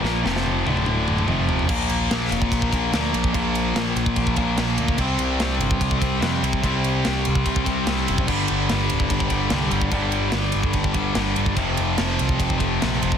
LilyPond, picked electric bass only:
\new Staff \with { instrumentName = "Picked electric bass" } { \clef bass \time 4/4 \key bes \lydian \tempo 4 = 146 bes,,8 f,,4 d,,4. f,,4 | bes,,8 bes,,8 bes,,8 f,,8 bes,,4 d,8 bes,,8 | bes,,4 bes,,8 bes,,8 bes,,8 bes,,8 bes,,8 d,8 | c,8 c,8 c,8 g,,8 c,4 f,8 c,8 |
c,4 c,8 c,8 c,8 c,8 c,8 fis,,8 | g,,8 g,,8 g,,8 d,,8 g,,4 c,8 g,,8 | g,,4 g,,8 g,,8 g,,8 g,,8 g,,8 g,,8 | f,,8 f,,8 f,,8 c,8 f,,4 bes,,8 f,,8 | }